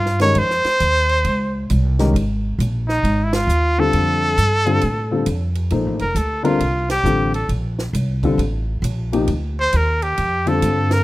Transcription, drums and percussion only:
0.06 snare
0.20 snare, ride
0.35 ride
0.50 snare
0.65 snare, ride
0.80 hi-hat pedal, ride
1.09 ride
1.25 ride
1.70 hi-hat pedal, ride
1.99 snare, ride
2.16 ride
2.60 hi-hat pedal, ride
2.89 snare
3.05 ride
3.33 snare, ride
3.49 hi-hat pedal
3.93 ride
4.38 hi-hat pedal, ride
4.67 ride
4.81 ride
5.26 hi-hat pedal, ride
5.55 ride
5.70 ride
5.99 ride
6.16 hi-hat pedal, ride
6.45 ride
6.60 ride
6.89 snare, ride
7.05 hi-hat pedal
7.34 ride
7.49 ride
7.79 snare
7.95 hi-hat pedal, ride
8.23 kick, ride
8.39 ride
8.84 hi-hat pedal, ride
9.13 ride
9.28 ride
9.73 hi-hat pedal, ride
10.02 ride
10.18 ride
10.47 ride
10.62 hi-hat pedal, ride
10.91 snare, ride

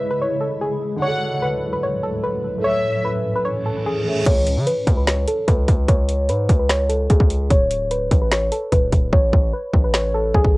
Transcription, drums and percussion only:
4.26 kick, closed hi-hat, crash
4.47 closed hi-hat
4.67 closed hi-hat
4.87 kick, closed hi-hat
5.07 finger snap, snare, closed hi-hat
5.28 closed hi-hat
5.48 kick, closed hi-hat
5.68 kick, closed hi-hat
5.88 kick, closed hi-hat
6.09 closed hi-hat
6.29 closed hi-hat
6.49 kick, closed hi-hat
6.70 finger snap, snare, closed hi-hat
6.90 closed hi-hat
7.10 kick, closed hi-hat
7.20 kick
7.30 closed hi-hat
7.51 kick, closed hi-hat
7.71 closed hi-hat
7.91 closed hi-hat
8.11 kick, closed hi-hat
8.32 finger snap, snare, closed hi-hat
8.52 closed hi-hat
8.72 kick, closed hi-hat
8.92 kick, closed hi-hat
9.13 kick
9.33 kick
9.74 kick
9.94 finger snap, snare
10.34 kick
10.45 kick

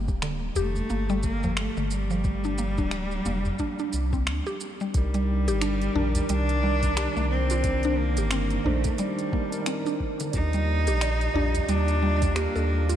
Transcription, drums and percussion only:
0.08 kick, shaker
0.22 finger snap, shaker
0.55 udu, shaker
0.76 udu, shaker
0.90 shaker
1.09 shaker
1.23 kick, shaker
1.43 udu, shaker
1.57 finger snap, shaker
1.77 shaker
1.91 shaker
2.10 shaker
2.24 kick, shaker
2.44 shaker
2.58 shaker
2.78 kick, shaker
2.91 finger snap, shaker
3.11 shaker
3.25 udu, shaker
3.45 udu, shaker
3.59 kick, shaker
3.79 shaker
3.93 shaker
4.13 kick, shaker
4.27 finger snap, shaker
4.46 shaker
4.60 shaker
4.80 shaker
4.94 kick, closed hi-hat, shaker
5.14 closed hi-hat, shaker
5.48 closed hi-hat, shaker
5.61 finger snap, closed hi-hat, shaker
5.82 closed hi-hat, shaker
5.96 udu
6.15 closed hi-hat, udu, shaker
6.29 closed hi-hat, shaker
6.49 closed hi-hat, shaker
6.82 kick, closed hi-hat, udu, shaker
6.97 finger snap, closed hi-hat, shaker
7.17 shaker
7.50 closed hi-hat, shaker
7.64 kick, closed hi-hat, shaker
7.83 closed hi-hat, shaker
8.17 closed hi-hat, shaker
8.31 finger snap, closed hi-hat, shaker
8.50 closed hi-hat, shaker
8.66 udu
8.84 kick, closed hi-hat, udu, shaker
8.98 closed hi-hat, shaker
9.19 closed hi-hat, shaker
9.33 kick
9.52 closed hi-hat, shaker
9.66 finger snap, closed hi-hat, shaker
9.86 shaker
10.00 kick
10.20 closed hi-hat, shaker
10.33 kick, closed hi-hat, shaker
10.53 closed hi-hat, shaker
10.87 closed hi-hat, shaker
11.01 finger snap, closed hi-hat, shaker
11.21 closed hi-hat, shaker
11.35 udu
11.55 closed hi-hat, udu, shaker
11.69 closed hi-hat, shaker
11.88 closed hi-hat, shaker
12.22 kick, closed hi-hat, udu, shaker
12.36 finger snap, closed hi-hat, shaker
12.56 shaker
12.89 closed hi-hat, shaker

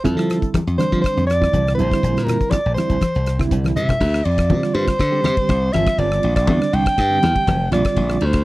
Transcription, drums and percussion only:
0.04 kick, closed hi-hat, muted conga
0.18 cross-stick, closed hi-hat
0.29 cross-stick, closed hi-hat, muted conga
0.42 kick, closed hi-hat
0.54 kick, cross-stick, closed hi-hat, high conga
0.68 closed hi-hat
0.79 cross-stick, closed hi-hat, muted conga, high conga
0.92 kick, closed hi-hat
1.04 kick, cross-stick, closed hi-hat, muted conga
1.18 closed hi-hat
1.30 cross-stick, closed hi-hat
1.42 kick, cross-stick
1.53 kick, closed hi-hat, high conga
1.67 cross-stick, closed hi-hat
1.79 closed hi-hat
1.91 kick, cross-stick, closed hi-hat
2.02 kick, closed hi-hat, muted conga
2.17 cross-stick, closed hi-hat
2.27 cross-stick, closed hi-hat, muted conga, low conga
2.41 kick, closed hi-hat
2.51 kick, cross-stick, closed hi-hat, high conga
2.76 cross-stick, closed hi-hat, high conga
2.90 kick, closed hi-hat
3.01 kick, cross-stick, closed hi-hat, muted conga, high conga
3.15 closed hi-hat
3.26 cross-stick, closed hi-hat
3.39 kick, cross-stick, closed hi-hat
3.51 kick, closed hi-hat
3.64 cross-stick, closed hi-hat, high conga
3.76 closed hi-hat, low conga
3.89 kick, cross-stick, closed hi-hat, low conga
4.00 kick, crash
4.14 cross-stick
4.25 ride, muted conga
4.38 kick, cross-stick, ride
4.50 kick, ride, high conga
4.63 cross-stick
4.74 ride
4.87 kick, cross-stick, ride
4.99 kick, cross-stick, ride, muted conga
5.24 cross-stick, ride, high conga
5.37 kick, ride
5.49 kick, cross-stick, ride
5.73 cross-stick, ride, muted conga, high conga
5.86 kick, cross-stick, ride
5.98 kick, ride, muted conga
6.12 cross-stick
6.23 ride, muted conga
6.36 kick, cross-stick, ride
6.47 kick, ride, high conga
6.62 cross-stick
6.74 ride
6.86 kick, cross-stick, ride
6.98 kick, cross-stick, ride, muted conga
7.23 cross-stick, ride, high conga
7.36 kick, ride
7.47 kick, cross-stick, ride, high conga
7.72 cross-stick, ride, muted conga, low conga
7.85 kick, cross-stick, ride
7.97 kick, ride, muted conga
8.10 cross-stick
8.21 ride, muted conga
8.33 kick, cross-stick, ride

